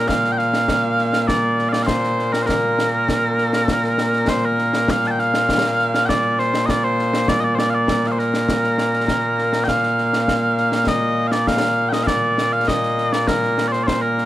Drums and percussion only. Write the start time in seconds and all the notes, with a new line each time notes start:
0.09 concert bass drum, snare
0.24 snare
0.39 snare
0.54 snare
0.68 concert bass drum, snare
0.99 snare
1.13 snare
1.28 concert bass drum, snare
1.59 snare
1.73 snare
1.88 concert bass drum, snare
2.03 snare
2.19 snare
2.34 snare
2.49 concert bass drum, snare
2.79 snare
3.09 concert bass drum, snare
3.38 snare
3.53 snare
3.68 concert bass drum, snare
3.84 snare
3.98 snare
4.13 snare
4.28 concert bass drum, snare
4.58 snare
4.73 snare
4.88 concert bass drum, snare
5.04 snare
5.19 snare
5.34 snare
5.49 concert bass drum, snare
5.79 snare
5.94 snare
6.09 concert bass drum, snare
6.39 snare
6.54 snare
6.69 concert bass drum, snare
6.99 snare
7.14 snare
7.28 concert bass drum, snare
7.59 snare
7.88 concert bass drum, snare
8.04 snare
8.19 snare
8.34 snare
8.49 concert bass drum, snare
8.64 snare
8.78 snare
8.93 snare
9.08 concert bass drum, snare
9.38 snare
9.53 snare
9.68 concert bass drum, snare
9.83 snare
9.98 snare
10.13 snare
10.28 concert bass drum, snare
10.58 snare
10.72 snare
10.87 concert bass drum, snare
11.32 snare
11.47 concert bass drum, snare
11.93 snare
12.07 concert bass drum, snare
12.38 snare
12.68 concert bass drum, snare
12.83 snare
12.98 snare
13.13 snare
13.28 concert bass drum, snare
13.43 snare
13.58 snare
13.73 snare
13.88 concert bass drum, snare
14.18 snare